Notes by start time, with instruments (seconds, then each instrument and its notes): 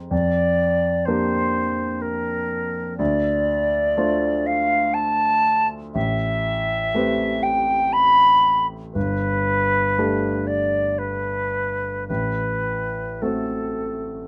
Already playing: grand piano G#3 D#4 G4 C5
0.11 grand piano F2, flute D5
1.05 grand piano A#3 D4 G4 A#4, flute C5
2.01 flute A#4
2.97 grand piano D2, flute D5
3.97 grand piano A3 D4 F4 C5
4.46 flute F5
4.93 flute A5
5.94 grand piano A1, flute E5
6.94 grand piano A3 C4 G4 B4
7.42 flute G5
7.92 flute B5
8.93 grand piano G1, flute B4
9.98 grand piano A3 D4 G4 A4
10.47 flute D5
10.98 flute B4
12.07 grand piano A1, flute B4
13.21 grand piano A3 C4 F#4 A4, flute A4